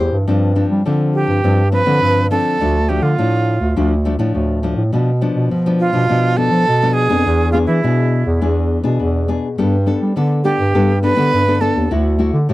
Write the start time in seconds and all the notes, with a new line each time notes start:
Already playing: E2 E3
0.00 E4 G4 C5
0.12 G2
0.27 G2 F3 C4 D4
0.55 F3 C4 D4
0.70 G3
0.85 D3 F3 C4 D4
1.14 G4
1.28 G2
1.44 G2 F3 C4 D4
1.72 F3 C4 D4 B4
1.86 D3 F3 C4 D4
2.02 G2 D3
2.31 F3 C4 D4 A4
2.60 D2 D3 F3 A3 D4
2.88 F3 A3 D4 G4
3.02 D3 F4
3.18 A2 F3 A3 D4
3.60 D2
3.76 D2 D3 F3 A3 D4
4.05 F3 A3 D4
4.18 A2 F3 A3 D4
4.34 D2 A2
4.63 F3 A3 D4
4.76 A2
4.92 B2 F3 B3 D4
5.21 F3 B3 D4
5.35 B2
5.51 B2 F3
5.66 F3 B3 D4
5.80 F4
5.93 B2 F3 B3 D4
6.09 B2 F3 B3 D4
6.37 F3 B3 D4 A4
6.51 F3
6.67 B2
6.82 F3 B3 D4
6.94 G#4
7.09 F2 B3 D4 G#4
7.26 E2 E3
7.52 B3 D4 F4 G#4
7.67 E3 E4
7.83 B2 B3 D4 G#4
8.26 E2
8.41 E2 E3 B3 D4 G#4
8.83 B2 B3 D4 G#4
8.99 E2 B2
9.28 B3 D4 G#4
9.58 G2 G3 B3 D4 A4
9.86 B3 D4 A4
10.01 G3
10.16 D3 B3 D4 A4
10.44 B3 D4 G4 A4
10.59 G2
10.74 G2 G3 B3 D4 A4
11.02 B3 D4 A4 B4
11.16 D3 B3 D4 A4
11.33 G2 D3
11.48 B3 D4 A4
11.61 B3 D4 A4
11.75 D#2
11.91 D2 D3 A3 E4 F#4
12.19 A3 E4 F#4
12.33 D3
12.49 A2 A3 E4 F#4